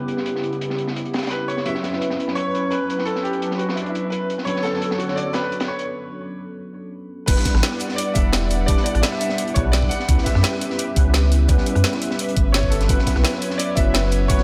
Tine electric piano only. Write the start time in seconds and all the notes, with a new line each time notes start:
Already playing: G3 B3 C#4 E4 B4
1.65 F#3 B3 C#4 E4 B4
4.46 F#3 B3 C#4 D4 A4
7.26 G3 B3 D4 E4 B4
8.14 G3 B3 D4 E4 B4
8.67 G3 B3 D4 E4 B4
9.55 G3 B3 D4 E4 B4
10.07 G3 B3 C#4 E4 B4
10.95 G3 B3 C#4 E4 B4
11.48 G3 B3 C#4 E4 B4
12.88 F#3 B3 C#4 E4 B4
13.76 F#3 B3 C#4 E4 B4
14.28 F#3 B3 C#4 E4 B4